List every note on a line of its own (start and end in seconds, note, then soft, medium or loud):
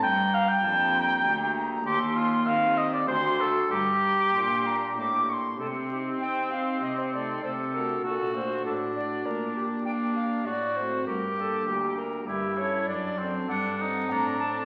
0.02 0.63 G2 medium
0.02 0.60 G2 medium
0.02 0.36 G5 loud
0.02 0.65 A#5 medium
0.34 0.50 F5 loud
0.49 1.70 G5 loud
0.63 1.23 F2 medium
0.63 1.21 F2 medium
0.63 1.21 A#3 medium
0.63 1.21 D4 medium
0.63 1.21 G4 medium
0.63 0.95 A5 medium
0.94 0.99 C6 medium
0.98 1.88 A#5 medium
1.25 1.85 D2 medium
1.25 1.82 D2 medium
1.25 1.82 A#3 medium
1.25 1.82 D4 medium
1.25 1.82 G4 medium
1.85 2.46 D#2 medium
1.85 2.43 D#2 medium
1.85 2.00 G4 loud
1.85 2.86 C6 medium
2.16 2.49 F4 medium
2.47 3.07 D#3 medium
2.47 3.05 D#3 medium
2.47 3.05 C4 medium
2.47 3.05 G4 medium
2.47 2.79 F5 loud
2.78 2.93 D#5 loud
2.93 3.08 D5 medium
3.08 3.70 D2 medium
3.08 3.68 D2 medium
3.08 3.67 A3 medium
3.08 3.68 D4 soft
3.08 3.68 F#4 soft
3.08 3.42 C5 loud
3.08 3.71 C6 medium
3.41 3.70 A4 loud
3.71 4.33 G2 medium
3.71 4.31 G2 medium
3.71 5.25 G4 loud
3.71 4.28 A#5 medium
3.71 3.75 C6 medium
4.34 4.96 A#2 medium
4.34 4.93 A#2 medium
4.34 4.93 A#3 medium
4.34 4.94 D4 medium
4.34 4.94 G4 medium
4.34 4.68 C6 medium
4.66 4.97 A#5 medium
4.97 5.58 A2 medium
4.97 5.56 A2 medium
4.97 5.56 A#3 soft
4.97 5.56 D4 soft
4.97 5.56 G4 medium
4.97 5.31 D6 medium
5.29 5.59 C6 medium
5.29 5.34 C#6 medium
5.59 6.17 C3 soft
5.59 6.17 C3 medium
5.59 7.39 C4 medium
5.59 5.66 A4 medium
5.91 6.18 C4 soft
5.91 6.48 D#4 soft
5.91 5.98 G4 medium
5.91 6.48 G4 soft
6.20 6.50 C4 soft
6.20 6.81 C4 medium
6.20 6.51 G5 medium
6.52 6.79 C4 soft
6.52 6.79 D#4 soft
6.52 6.80 G4 soft
6.52 6.84 F5 medium
6.82 7.39 C3 soft
6.82 7.42 C3 medium
6.82 7.00 D#5 medium
6.98 7.13 C5 medium
7.13 7.40 A3 soft
7.13 7.40 D#4 soft
7.13 7.41 A4 soft
7.13 7.43 D5 medium
7.43 8.03 C3 medium
7.43 8.00 C3 soft
7.43 8.03 A4 medium
7.43 7.50 C5 medium
7.73 8.31 A3 soft
7.73 8.31 D4 soft
7.73 8.31 F#4 soft
7.73 8.06 A#4 medium
8.04 8.64 A#2 medium
8.04 8.61 A#2 soft
8.04 8.64 F#4 medium
8.04 8.34 A4 medium
8.35 8.92 A3 soft
8.35 8.92 D4 soft
8.35 8.92 F#4 soft
8.35 8.65 C5 medium
8.65 9.24 A2 medium
8.65 9.22 A2 soft
8.65 9.83 D4 medium
8.65 8.72 A4 medium
8.96 9.23 A3 soft
8.96 9.23 D4 soft
8.96 9.23 F#4 soft
8.96 9.27 D5 medium
9.26 9.84 A#2 medium
9.26 9.82 A#2 soft
9.26 9.55 A#4 medium
9.56 10.12 D4 soft
9.56 9.62 G4 medium
9.56 10.12 G4 soft
9.85 10.45 A#3 medium
9.85 10.42 A#3 soft
9.85 10.45 D4 medium
9.85 9.92 G5 medium
10.15 10.44 D4 soft
10.15 10.44 G4 soft
10.15 10.47 F5 medium
10.45 11.05 A2 medium
10.45 11.03 A2 soft
10.45 11.05 F#4 medium
10.45 10.77 D5 medium
10.76 11.04 A3 soft
10.76 11.04 C4 soft
10.76 11.04 F#4 soft
10.76 11.05 C5 medium
11.06 11.66 G2 medium
11.06 11.63 G2 soft
11.06 11.98 G4 medium
11.06 11.36 A#4 medium
11.36 11.93 A#3 soft
11.36 11.93 D4 soft
11.36 11.93 G4 soft
11.36 11.41 A#4 medium
11.40 11.66 A4 medium
11.66 12.26 D2 medium
11.66 12.23 D2 medium
11.66 11.96 G4 medium
11.96 12.24 A#3 soft
11.96 12.24 D4 soft
11.96 12.25 G4 soft
11.96 12.28 A#4 medium
12.27 12.86 G2 medium
12.27 12.84 G2 soft
12.27 12.84 E4 medium
12.27 12.59 G4 medium
12.57 12.85 C#4 soft
12.57 12.85 E4 soft
12.57 12.85 A4 soft
12.57 12.88 C#5 medium
12.87 13.47 F#2 medium
12.87 13.45 F#2 medium
12.87 13.20 D4 medium
12.87 13.27 D5 medium
13.18 13.46 C4 soft
13.18 13.48 C4 medium
13.18 13.75 D4 soft
13.18 13.76 A4 soft
13.48 14.08 G2 medium
13.48 14.06 G2 medium
13.48 13.82 D4 medium
13.48 14.11 F#5 medium
13.79 14.36 C4 soft
13.79 14.36 D4 soft
13.79 14.11 D#4 medium
13.79 14.37 A4 soft
14.09 14.65 A2 medium
14.09 14.65 D4 medium
14.09 14.42 A#5 loud
14.40 14.65 C4 soft
14.40 14.65 D4 soft
14.40 14.65 A4 soft
14.40 14.65 A5 medium